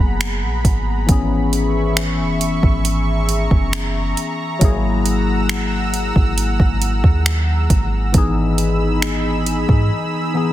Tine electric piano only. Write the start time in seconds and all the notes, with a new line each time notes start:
Already playing: F#3 A#3 B3 G#4
1.07 E3 B3 C#4
1.12 G#4
4.59 F#3 A#3 E4
4.64 G#4
8.12 E3 B3 D#4
8.18 G#4
10.34 E3 B3 D#4 G#4